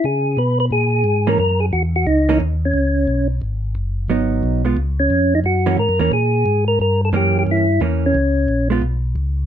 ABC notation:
X:1
M:4/4
L:1/8
Q:"Swing" 1/4=178
K:Gb
V:1 name="Tonewheel organ"
A2 c c A3 B | B A G G E2 z D- | D3 z4 z | z4 z D2 E |
G2 B B A3 B | B =A =G G =E2 z D- | D3 z4 z |]
V:2 name="Hollow-body jazz guitar"
z6 z [_F,B,D] | z4 z [_F,B,D] z2 | z8 | [G,CE]3 [A,CF] z4 |
z [_F,B,D] z [F,B,D] z4 | z2 [=E,B,D]3 z [E,B,D]2 | z3 [A,CF] z4 |]
V:3 name="Tonewheel organ" clef=bass
D,2 C,2 B,,2 A,,2 | G,,2 _F,,2 D,,2 E,,2 | D,,2 C,,2 A,,,2 G,,,2 | A,,,2 C,,2 D,,2 F,,2 |
G,,2 (3A,, G,, _F,, B,,2 A,,2 | =G,,2 _G,,2 =G,,2 =E,,2 | D,,2 B,,,2 C,,2 D,,2 |]